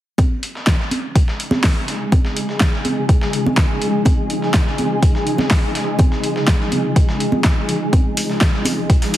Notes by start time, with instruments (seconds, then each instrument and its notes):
0.18 ambient pad C#3 F3 G#3 D#4 G#4, kick, closed hi-hat, high conga
0.43 closed hi-hat
0.55 snare
0.67 kick, snare, closed hi-hat
0.80 snare
0.91 closed hi-hat, high conga
1.15 kick, closed hi-hat
1.28 snare
1.40 closed hi-hat
1.51 snare, high conga
1.64 kick, snare, open hi-hat
1.88 snare, closed hi-hat
2.12 kick, closed hi-hat, high conga
2.25 snare
2.36 closed hi-hat
2.49 snare
2.60 kick, snare, closed hi-hat
2.73 snare
2.85 closed hi-hat, high conga
3.09 kick, closed hi-hat
3.21 snare
3.33 closed hi-hat
3.46 high conga
3.57 kick, snare, closed hi-hat
3.82 closed hi-hat
4.05 kick, closed hi-hat, high conga
4.30 closed hi-hat
4.42 snare
4.54 kick, snare, closed hi-hat
4.67 snare
4.78 closed hi-hat, high conga
5.03 kick, closed hi-hat
5.15 snare
5.27 closed hi-hat
5.38 snare, high conga
5.51 kick, snare, open hi-hat
5.75 snare, closed hi-hat
5.99 kick, closed hi-hat, high conga
6.12 snare
6.24 closed hi-hat
6.36 snare
6.47 kick, snare, closed hi-hat
6.60 snare
6.72 closed hi-hat, high conga
6.96 kick, closed hi-hat
7.09 snare
7.20 closed hi-hat
7.32 high conga
7.44 kick, snare, closed hi-hat
7.69 closed hi-hat
7.93 ambient pad C#2 C3 G#4, kick, closed hi-hat, high conga
8.17 closed hi-hat, open hi-hat
8.30 snare
8.41 kick, snare, closed hi-hat
8.54 snare
8.65 closed hi-hat, open hi-hat, high conga
8.90 kick, closed hi-hat
9.02 snare, open hi-hat
9.14 closed hi-hat, open hi-hat